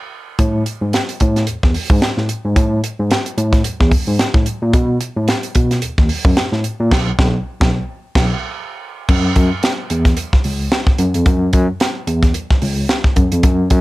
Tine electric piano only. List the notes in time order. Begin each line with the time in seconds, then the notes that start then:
0.39 A2
0.81 G#2
1.21 A2
1.48 E2
1.63 E2
1.90 G#2
2.02 A2
2.17 A2
2.45 G#2
2.56 A2
2.99 G#2
3.38 A2
3.65 E2
3.81 E2
4.08 G#2
4.34 A2
4.62 A#2
4.74 B2
5.16 A2
5.56 B2
5.83 D#2
5.98 D#2
6.25 F#2
6.37 A2
6.52 A2
6.80 A#2
6.92 B1
7.19 B1
7.61 B1
8.16 B1
9.09 F#2
9.36 F#2
9.91 E2
10.45 C#2
10.99 F#2
11.15 F2
11.26 F#2
11.53 F#2
12.08 E2
12.63 C#2
13.17 F#2
13.32 F2
13.44 F#2
13.71 F#2